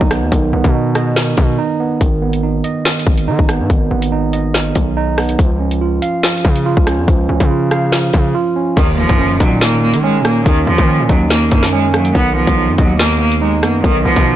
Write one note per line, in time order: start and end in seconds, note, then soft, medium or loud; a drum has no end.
0.00 0.23 B1 loud
0.00 0.32 D#3 medium
0.00 0.11 B3 medium
0.00 0.74 D#4 loud
0.00 0.32 D#5 loud
0.00 kick loud
0.11 0.52 B3 medium
0.11 cross-stick loud
0.11 closed hi-hat medium
0.22 0.31 D#2 loud
0.32 0.52 B1 loud
0.32 1.15 D#3 medium
0.32 kick loud
0.32 closed hi-hat medium
0.53 0.64 B1 loud
0.53 1.59 B3 medium
0.64 1.35 B2 loud
0.64 kick loud
0.64 closed hi-hat medium
0.74 1.57 D#4 medium
0.95 2.01 D#5 loud
0.95 cross-stick medium
0.95 closed hi-hat medium
1.16 2.00 D#3 medium
1.16 snare loud
1.16 closed hi-hat medium
1.37 1.58 B2 loud
1.37 kick loud
1.37 closed hi-hat medium
1.59 2.01 D#4 loud
1.80 2.01 B3 medium
2.01 2.62 G#1 loud
2.01 2.84 D#3 medium
2.01 kick loud
2.01 closed hi-hat medium
2.22 3.28 B3 medium
2.33 closed hi-hat medium
2.43 3.27 D#4 medium
2.64 3.70 D#5 loud
2.64 closed hi-hat medium
2.85 3.69 D#3 medium
2.85 snare loud
2.85 closed hi-hat soft
2.92 closed hi-hat medium
2.99 closed hi-hat medium
3.07 3.29 G#1 loud
3.07 kick loud
3.18 closed hi-hat medium
3.28 3.38 D#3 loud
3.28 4.11 D#4 medium
3.39 3.61 G#1 loud
3.39 kick loud
3.49 3.90 B3 medium
3.49 cross-stick medium
3.49 closed hi-hat medium
3.60 3.69 G#2 loud
3.70 3.90 G#1 loud
3.70 4.53 D#3 medium
3.70 kick loud
3.70 closed hi-hat medium
3.91 4.72 G#1 loud
3.91 4.97 B3 medium
4.02 closed hi-hat medium
4.12 4.96 D#4 medium
4.33 5.39 D#5 medium
4.33 closed hi-hat medium
4.54 5.39 D#3 medium
4.54 snare loud
4.54 closed hi-hat medium
4.75 5.36 B1 loud
4.75 kick loud
4.75 closed hi-hat medium
4.97 5.39 D#4 loud
5.18 5.39 B3 medium
5.18 cross-stick loud
5.18 open hi-hat medium
5.29 closed hi-hat medium
5.39 6.00 C#2 loud
5.39 6.22 F3 medium
5.39 kick loud
5.39 closed hi-hat medium
5.60 6.66 C#4 medium
5.71 closed hi-hat medium
5.81 6.65 F4 medium
6.02 7.08 F5 loud
6.02 closed hi-hat medium
6.23 7.07 F3 medium
6.23 snare loud
6.23 closed hi-hat soft
6.30 closed hi-hat medium
6.38 closed hi-hat medium
6.45 6.76 C#3 loud
6.45 kick medium
6.56 closed hi-hat medium
6.66 7.49 F4 loud
6.77 7.00 C#2 loud
6.77 kick loud
6.87 7.28 C#4 medium
6.87 cross-stick loud
6.87 closed hi-hat medium
6.98 7.07 F2 loud
7.08 7.28 C#2 loud
7.08 7.91 F3 medium
7.08 kick loud
7.08 closed hi-hat medium
7.29 7.40 C#2 loud
7.29 8.35 C#4 medium
7.40 8.11 C#3 loud
7.40 kick medium
7.40 closed hi-hat medium
7.50 8.33 F4 medium
7.71 8.77 F5 loud
7.71 cross-stick medium
7.71 closed hi-hat medium
7.92 8.77 F3 medium
7.92 snare loud
7.92 closed hi-hat medium
8.13 8.34 C#3 loud
8.13 kick loud
8.13 closed hi-hat medium
8.35 8.77 F4 loud
8.56 8.77 C#4 medium
8.77 9.08 D#2 loud
8.77 8.95 D#3 medium
8.77 9.60 D#3 medium
8.77 kick loud
8.77 closed hi-hat medium
8.77 crash loud
8.77 impact medium
8.98 9.38 F3 medium
8.98 10.04 A#3 medium
9.09 9.39 F#2 loud
9.09 kick loud
9.09 closed hi-hat medium
9.19 10.02 C#4 medium
9.40 9.95 A#2 loud
9.40 9.58 F#3 medium
9.40 10.46 D#4 loud
9.40 kick medium
9.40 closed hi-hat medium
9.61 10.45 D#3 medium
9.61 9.80 A#3 loud
9.61 snare loud
9.61 closed hi-hat medium
9.82 10.01 A#3 medium
9.94 10.21 D#3 loud
9.94 closed hi-hat medium
10.04 10.22 G#3 medium
10.04 10.87 C#4 loud
10.20 10.45 A#2 loud
10.25 10.66 A#3 medium
10.25 10.43 A#3 medium
10.25 cross-stick loud
10.25 closed hi-hat medium
10.46 10.66 D#2 loud
10.46 10.64 D#3 loud
10.46 11.29 D#3 loud
10.46 kick loud
10.46 closed hi-hat medium
10.67 10.78 D#2 loud
10.67 11.07 F3 medium
10.67 11.73 A#3 medium
10.78 11.01 D#3 loud
10.78 kick medium
10.78 closed hi-hat medium
10.88 11.71 C#4 medium
10.99 11.09 A#2 loud
11.09 11.50 D#2 loud
11.09 11.28 F#3 medium
11.09 12.15 D#4 loud
11.09 kick medium
11.09 closed hi-hat medium
11.30 12.14 D#3 medium
11.30 11.49 A#3 loud
11.30 snare loud
11.30 closed hi-hat medium
11.51 12.12 F#2 loud
11.51 11.70 A#3 medium
11.51 kick loud
11.51 closed hi-hat medium
11.63 snare medium
11.73 11.91 G#3 medium
11.73 12.15 C#4 loud
11.94 12.12 F#3 medium
11.94 12.15 A#3 medium
11.94 cross-stick loud
11.94 closed hi-hat medium
12.05 closed hi-hat medium
12.15 12.46 B1 loud
12.15 12.98 D#3 medium
12.15 12.33 B3 medium
12.15 kick loud
12.15 closed hi-hat medium
12.36 12.76 F3 medium
12.36 13.42 B3 medium
12.47 12.70 B1 loud
12.47 kick medium
12.47 closed hi-hat medium
12.57 13.40 D#4 medium
12.68 12.78 F#2 loud
12.78 13.64 D#2 loud
12.78 12.97 F#3 medium
12.78 13.84 D#5 loud
12.78 kick medium
12.78 closed hi-hat medium
12.99 13.83 D#3 medium
12.99 13.18 A#3 loud
12.99 snare loud
12.99 closed hi-hat medium
13.21 13.39 A#3 medium
13.32 closed hi-hat medium
13.42 13.60 G#3 medium
13.42 14.25 D#4 loud
13.63 13.83 F#2 loud
13.63 13.81 A#3 medium
13.63 14.04 B3 medium
13.63 cross-stick loud
13.63 closed hi-hat medium
13.84 14.04 B1 loud
13.84 14.36 D#3 medium
13.84 14.02 D#3 loud
13.84 kick loud
13.84 closed hi-hat medium
14.05 14.16 B1 loud
14.05 14.36 F3 loud
14.05 14.36 B3 medium
14.16 14.36 B2 loud
14.16 kick medium
14.16 closed hi-hat medium
14.26 14.36 D#4 medium